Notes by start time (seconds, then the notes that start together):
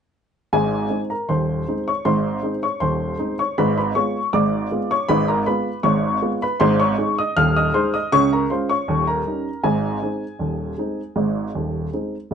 0.53 G#1 G#2 G#4 G#5
0.90 G#3 C4 D#4
1.10 A#4 A#5
1.29 D#1 D#2 C5 C6
1.68 G#3 C4 D#4
1.88 C#5 C#6
2.05 G#1 G#2 C5 C6
2.43 G#3 C4 D#4
2.63 C#5 C#6
2.80 D#1 D#2 C5 C6
3.18 G#3 C4 D#4
3.39 C#5 C#6
3.58 G#1 G#2 B4 B5
3.77 B4 B5
3.95 G#3 B3 F4 C#5 C#6
4.33 G#1 G#2 D5 D6
4.71 G#3 B3 F4
4.91 C#5 C#6
5.08 G#1 G#2 B4 B5
5.28 A#4 A#5
5.46 G#3 B3 F4 B4 B5
5.83 G#1 G#2 C#5 C#6
6.22 G#3 B3 F4
6.42 B4 B5
6.60 G#1 G#2 C5 C6
6.80 C#5 C#6
6.98 G#3 D#4 G#4
7.19 D#5 D#6
7.37 D#1 D#2 F5 F6
7.56 D#5 D#6
7.74 G#3 D#4 G#4 C5 C6
7.94 D#5 D#6
8.12 C#2 C#3 C#5 C#6
8.33 A#4 A#5
8.50 G#3 C#4 F4 C5 C6
8.69 C#5 C#6
8.88 D#1 D#2
9.07 A#4 A#5
9.27 G3 C#4 D#4
9.63 G#1 G#2 G#4 G#5
10.02 G#3 C4 D#4
10.39 D#1 D#2
10.78 G#3 C4 D#4
11.16 G#1 G#2
11.55 D#1 D#2
11.93 G#3 C4 D#4
12.31 G#1